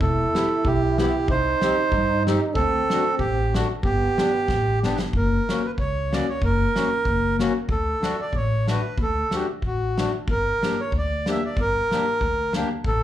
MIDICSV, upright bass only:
0, 0, Header, 1, 2, 480
1, 0, Start_track
1, 0, Tempo, 639659
1, 13, Time_signature, 2, 2, 24, 8
1, 6252, Tempo, 645856
1, 9745, End_track
2, 0, Start_track
2, 0, Title_t, "Upright bass"
2, 0, Program_c, 0, 32
2, 3, Note_on_c, 0, 28, 79
2, 174, Note_off_c, 0, 28, 0
2, 484, Note_on_c, 0, 35, 79
2, 798, Note_off_c, 0, 35, 0
2, 963, Note_on_c, 0, 36, 77
2, 1131, Note_off_c, 0, 36, 0
2, 1439, Note_on_c, 0, 43, 88
2, 1751, Note_off_c, 0, 43, 0
2, 1918, Note_on_c, 0, 38, 87
2, 2086, Note_off_c, 0, 38, 0
2, 2394, Note_on_c, 0, 33, 87
2, 2710, Note_off_c, 0, 33, 0
2, 2876, Note_on_c, 0, 31, 88
2, 3047, Note_off_c, 0, 31, 0
2, 3365, Note_on_c, 0, 33, 77
2, 3601, Note_off_c, 0, 33, 0
2, 3627, Note_on_c, 0, 31, 66
2, 3834, Note_off_c, 0, 31, 0
2, 3852, Note_on_c, 0, 30, 70
2, 4023, Note_off_c, 0, 30, 0
2, 4338, Note_on_c, 0, 37, 70
2, 4649, Note_off_c, 0, 37, 0
2, 4817, Note_on_c, 0, 30, 84
2, 4982, Note_off_c, 0, 30, 0
2, 5294, Note_on_c, 0, 30, 75
2, 5604, Note_off_c, 0, 30, 0
2, 5769, Note_on_c, 0, 38, 81
2, 5936, Note_off_c, 0, 38, 0
2, 6250, Note_on_c, 0, 33, 75
2, 6562, Note_off_c, 0, 33, 0
2, 6733, Note_on_c, 0, 38, 81
2, 6900, Note_off_c, 0, 38, 0
2, 7210, Note_on_c, 0, 33, 66
2, 7528, Note_off_c, 0, 33, 0
2, 7695, Note_on_c, 0, 31, 67
2, 7865, Note_off_c, 0, 31, 0
2, 8177, Note_on_c, 0, 38, 74
2, 8491, Note_off_c, 0, 38, 0
2, 8655, Note_on_c, 0, 31, 81
2, 8824, Note_off_c, 0, 31, 0
2, 9134, Note_on_c, 0, 38, 75
2, 9443, Note_off_c, 0, 38, 0
2, 9609, Note_on_c, 0, 33, 81
2, 9745, Note_off_c, 0, 33, 0
2, 9745, End_track
0, 0, End_of_file